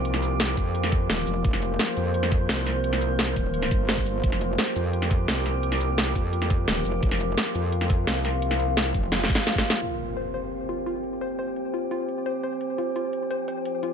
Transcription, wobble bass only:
X:1
M:4/4
L:1/8
Q:1/4=172
K:Cphr
V:1 name="Wobble bass" clef=bass
C,,3 F,,3 E,,, F,,, | F,,,2 z F,,3 C,,2- | C,,3 E,,,2 G,,,3 | F,,,2 z F,,3 C,,2- |
C,,3 F,,3 E,,, F,,, | F,,,2 z F,,3 C,,2- | C,,3 F,,,2 z3 | z8 |
z8 | z8 |]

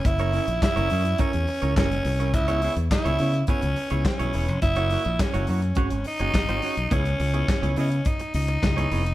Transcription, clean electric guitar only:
X:1
M:4/4
L:1/16
Q:1/4=105
K:C#dor
V:1 name="Clean electric guitar"
z [CEAc] [CEAc] z2 [CEAc] [CEAc] z [CEAc] z2 [CEAc] [CEAc] z2 [CEAc] | z [B,EGc] [B,EGc] z2 [B,EGc] [B,EGc] z [B,EGc] z2 [B,EGc] z [B,EGc] [B,EGc] z | z [A,EFc] [A,EFc] z2 [A,EFc] [A,EFc] z [CFGc] z2 [CFGc] z [CFGc] [CFGc] z | [B,EGc] z2 [B,EGc] z [B,EGc] [B,EGd] z6 [B,EGc] [B,EGc] z |]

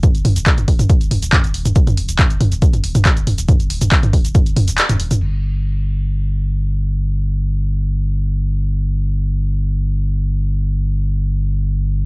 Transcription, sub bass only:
X:1
M:4/4
L:1/16
Q:1/4=139
K:Eblyd
V:1 name="Sub bass" clef=bass
z E,,, E,,, E,,, z E,,, E,,, E,,, z E,,, E,,, E,,, z E,,, E,,, E,,, | z E,,, E,,, E,,, z E,,, E,,, E,,, z E,,, E,,, E,,, z E,,, E,,, E,,, | z E,,, E,,, E,,, z E,,, E,,, E,,, z E,,, E,,, E,,, z E,,, E,,, E,,, | G,,,16- |
G,,,16- | G,,,16- | G,,,16 |]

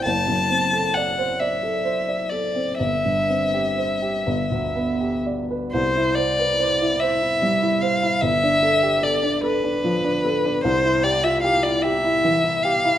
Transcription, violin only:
X:1
M:6/8
L:1/16
Q:3/8=48
K:C
V:1 name="Violin"
a4 ^f2 e4 d2 | e8- e2 z2 | c2 d4 e4 f2 | e4 d2 B6 |
c2 d e f d e4 f2 |]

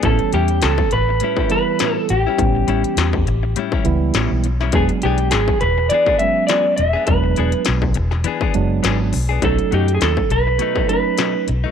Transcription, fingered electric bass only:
X:1
M:4/4
L:1/16
Q:"Swing 16ths" 1/4=102
K:A
V:1 name="Fingered electric bass" clef=bass
A,,, z E,,2 C,, z A,,,2 z6 A,,, z | A,,,2 A,,, z E,,2 A,,,2 z2 C,,2 A,,, B,,,3 | E,,, z B,,,2 G,,, z E,,,2 z6 E,,, z | E,,,2 E,,, z B,,,2 E,,,2 z2 F,,,2 G,,,2 B,,,2 |
B,,, z F,,2 ^D,, z B,,,2 z6 B,,, z |]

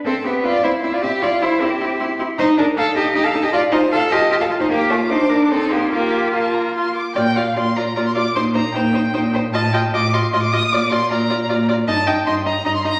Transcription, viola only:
X:1
M:3/4
L:1/8
Q:1/4=153
K:C
V:1 name="Viola"
C C C C C C | E E E E E E | [K:Bb] E E E E E E | F F F F F F |
B,2 D2 E2 | F4 F z | F F F F F F | E E E E E E |
F F F F F F | F F F F F F | E E E E E E |]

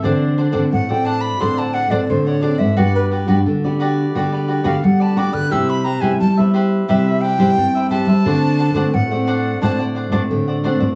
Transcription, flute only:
X:1
M:4/4
L:1/16
Q:1/4=88
K:Dmix
V:1 name="Flute"
z4 f g a b c' a f d c ^c d e | f B z8 z =f ^f a d' f' | e' b _b _a =a2 z2 e2 g4 a2- | a4 f4 a2 z6 |]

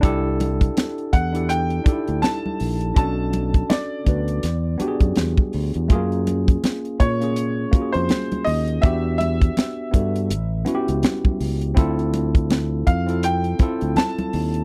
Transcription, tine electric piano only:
X:1
M:4/4
L:1/16
Q:"Swing 16ths" 1/4=82
K:Em
V:1 name="Tine electric piano"
[DEGA]6- [DEGA] [DEGA]3 [D^DEGA]6 | [^CDFA]6 [B,DFB]2 z2 [B,DFG^G]6 | [A,^A,^C^E^G]6- [=A,^A,CEG] [A,CEG]3 [A,CEFG]6 | [B,DFG]6 [B,DFA]2 z2 [B,^CEFG]6 |
[CE=FA]6- [CEFA] [CEFA]3 [CEFA]6 |]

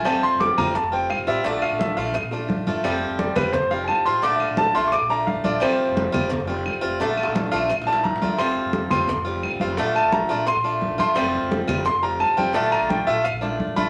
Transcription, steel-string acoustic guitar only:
X:1
M:4/4
L:1/8
Q:1/4=173
K:F
V:1 name="Steel-string acoustic guitar"
[F,G,CF]3 [G,CF] z [G,CF]2 [G,CF] | [D,A,DF]3 [A,DF] z [A,DF]2 [A,DF] | [F,G,CF]3 [G,CF] z [G,CF]2 [G,CF] | [D,A,DF]3 [A,DF] z [A,DF]2 [A,DF] |
[F,G,CF]3 [G,CF] z [G,CF]2 [G,CF] | [D,A,DF]3 [A,DF] z [A,DF]2 [A,DF] | [F,G,CF]3 [G,CF] z [G,CF]2 [G,CF] | [D,A,DF]3 [A,DF] z [A,DF]2 [A,DF] |
[F,G,CF]3 [G,CF] z [G,CF]2 [G,CF] | [D,A,DF]3 [A,DF] z [A,DF]2 [A,DF] |]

